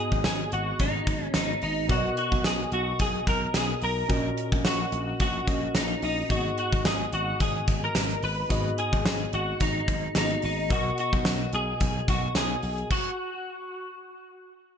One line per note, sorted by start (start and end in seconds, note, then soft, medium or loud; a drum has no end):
0.00 0.48 G#2 medium
0.00 1.85 B3 medium
0.00 1.85 F#4 medium
0.00 0.23 G#4 medium
0.00 1.86 G#4 medium
0.00 1.86 D#5 medium
0.12 0.21 G#1 medium
0.12 kick medium
0.24 0.44 G#1 medium
0.24 0.53 G#4 loud
0.24 snare loud
0.24 closed hi-hat medium
0.24 tambourine medium
0.52 0.72 G#1 medium
0.52 0.81 F#4 loud
0.52 closed hi-hat medium
0.79 0.99 G#1 medium
0.79 1.24 D#4 medium
0.79 kick medium
0.79 closed hi-hat medium
1.07 1.27 G#1 medium
1.07 kick loud
1.07 closed hi-hat medium
1.24 1.34 C#4 medium
1.34 1.55 G#1 medium
1.34 1.61 D#4 medium
1.34 snare loud
1.34 closed hi-hat medium
1.34 tambourine medium
1.62 1.89 G#1 loud
1.62 1.91 D#4 medium
1.62 open hi-hat medium
1.88 2.09 B1 loud
1.88 2.68 B2 medium
1.88 4.05 B3 medium
1.88 4.06 F#4 medium
1.88 2.17 F#4 loud
1.88 4.06 A#4 medium
1.88 1.97 D5 soft
1.88 kick loud
1.88 closed hi-hat medium
1.97 4.10 D#5 medium
2.17 2.45 F#4 medium
2.17 closed hi-hat medium
2.32 2.41 B1 loud
2.32 kick medium
2.44 2.64 B1 medium
2.44 2.71 G#4 loud
2.44 snare loud
2.44 closed hi-hat medium
2.44 tambourine medium
2.72 2.92 B1 loud
2.72 3.00 F#4 medium
2.72 closed hi-hat medium
2.99 3.20 B1 medium
2.99 3.26 G#4 loud
2.99 kick medium
2.99 closed hi-hat medium
3.27 3.47 B1 medium
3.27 3.54 A#4 medium
3.27 kick medium
3.27 closed hi-hat medium
3.54 3.74 B1 medium
3.54 3.83 G#4 medium
3.54 snare medium
3.54 closed hi-hat medium
3.54 tambourine medium
3.82 4.02 B1 medium
3.82 4.66 A#4 loud
3.82 open hi-hat medium
4.08 4.29 A#1 loud
4.08 4.88 A#2 medium
4.08 5.44 C#4 medium
4.08 5.45 F#4 medium
4.08 5.45 A#4 medium
4.08 5.45 D#5 medium
4.08 kick loud
4.08 closed hi-hat medium
4.37 closed hi-hat medium
4.52 4.61 A#1 loud
4.52 kick medium
4.65 4.85 A#1 medium
4.65 5.20 F#4 medium
4.65 snare loud
4.65 closed hi-hat medium
4.65 tambourine medium
4.92 5.12 A#1 loud
4.92 closed hi-hat medium
5.20 5.40 A#1 loud
5.20 5.77 F#4 medium
5.20 kick medium
5.20 closed hi-hat medium
5.47 5.67 A#1 medium
5.47 6.30 C#4 soft
5.47 6.29 F#4 soft
5.47 6.30 A#4 soft
5.47 6.30 D#5 medium
5.47 kick loud
5.47 closed hi-hat medium
5.75 5.95 A#1 medium
5.75 6.01 D#4 medium
5.75 snare loud
5.75 closed hi-hat medium
5.75 tambourine medium
6.02 6.22 A#1 loud
6.02 6.29 D#4 medium
6.02 open hi-hat medium
6.29 6.50 G#1 loud
6.29 7.09 G#2 medium
6.29 6.37 A#3 soft
6.29 8.46 F#4 medium
6.29 6.58 F#4 medium
6.29 8.46 G#4 medium
6.29 8.47 D#5 medium
6.29 kick loud
6.29 closed hi-hat loud
6.36 8.48 B3 medium
6.58 6.86 F#4 medium
6.58 closed hi-hat medium
6.73 6.82 G#1 loud
6.73 kick medium
6.85 7.05 G#1 medium
6.85 7.13 G#4 medium
6.85 snare loud
6.85 closed hi-hat medium
6.85 tambourine medium
7.12 7.32 G#1 loud
7.12 7.41 F#4 medium
7.12 closed hi-hat medium
7.40 7.60 G#1 medium
7.40 7.84 G#4 medium
7.40 kick medium
7.40 closed hi-hat medium
7.68 7.88 G#1 medium
7.68 kick loud
7.68 closed hi-hat medium
7.84 8.23 A#4 medium
7.95 8.15 G#1 loud
7.95 snare medium
7.95 closed hi-hat medium
7.95 tambourine medium
8.10 closed hi-hat medium
8.22 8.43 G#1 loud
8.22 8.78 B4 loud
8.22 open hi-hat medium
8.49 8.70 G#1 loud
8.49 9.29 G#2 medium
8.49 10.12 B3 medium
8.49 10.12 F#4 medium
8.49 10.12 G#4 medium
8.49 10.13 D#5 medium
8.49 kick loud
8.49 closed hi-hat medium
8.78 9.29 G#4 medium
8.78 closed hi-hat medium
8.93 9.02 G#1 loud
8.93 kick medium
9.05 9.25 G#1 medium
9.05 snare loud
9.05 closed hi-hat medium
9.05 tambourine medium
9.33 9.53 G#1 medium
9.33 9.62 F#4 medium
9.33 closed hi-hat medium
9.60 9.80 G#1 loud
9.60 10.16 D#4 medium
9.60 kick medium
9.60 closed hi-hat medium
9.88 10.08 G#1 medium
9.88 kick medium
9.88 closed hi-hat medium
10.15 10.35 G#1 medium
10.15 10.22 A#3 soft
10.15 10.42 D#4 medium
10.15 10.69 F#4 soft
10.15 10.71 G#4 soft
10.15 10.70 D#5 medium
10.15 snare loud
10.15 closed hi-hat medium
10.15 tambourine medium
10.22 10.68 B3 soft
10.30 closed hi-hat medium
10.42 10.71 G#1 loud
10.42 10.69 D#4 medium
10.42 open hi-hat medium
10.69 10.90 B1 loud
10.69 11.49 B2 medium
10.69 12.86 B3 medium
10.69 12.86 F#4 medium
10.69 10.97 F#4 medium
10.69 12.87 A#4 medium
10.69 12.87 D#5 medium
10.69 kick loud
10.69 closed hi-hat loud
10.98 11.50 F#4 medium
10.98 closed hi-hat medium
11.13 11.22 B1 loud
11.13 kick medium
11.25 11.45 B1 medium
11.25 snare loud
11.25 closed hi-hat medium
11.25 tambourine medium
11.53 11.73 B1 loud
11.53 12.09 G#4 medium
11.53 closed hi-hat medium
11.80 12.01 B1 loud
11.80 kick loud
11.80 closed hi-hat medium
12.08 12.28 B1 medium
12.08 12.36 F#4 medium
12.08 kick loud
12.08 closed hi-hat medium
12.35 12.55 B1 medium
12.35 12.91 G#4 medium
12.35 snare loud
12.35 closed hi-hat loud
12.35 tambourine medium
12.63 12.83 B1 medium
12.63 open hi-hat medium
12.78 closed hi-hat soft
12.90 14.52 F#4 medium
12.90 kick loud
12.90 crash medium